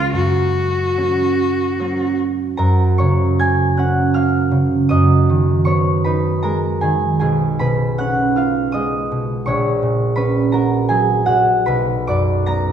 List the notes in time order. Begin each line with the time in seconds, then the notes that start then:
Already playing: C#2 G#3 B3 C#4 F4
0.13 F#2 F#4
0.97 F#3 A#3 C#4
1.79 F#3 A#3 C#4
2.57 F#2 A#4 A#5
2.98 C#3 C#5 C#6
3.39 A#3 G#5 G#6
3.77 C#4 F#5 F#6
4.14 A#3 F5 F6
4.51 C#3
4.89 F#2 D#5 D#6
5.30 D#3
5.65 B3 C#5 C#6
6.04 D#4 B4 B5
6.43 G#3 A#4 A#5
6.81 D#3 G#4 G#5
7.19 B1 G#4 G#5
7.59 B2 B4 B5
7.98 C#4 F#5 F#6
8.36 F4 F5 F6
8.72 G#3 D#5 D#6
9.12 B2
9.46 A#1 C#5 C#6
9.82 A#2
10.16 C#4 B4 B5
10.52 F#4 A#4 A#5
10.89 F#3 G#4 G#5
11.26 A#2 F#4 F#5
11.66 B1 B4 B5
12.07 F#2 D5 D6
12.46 B3 A#5 A#6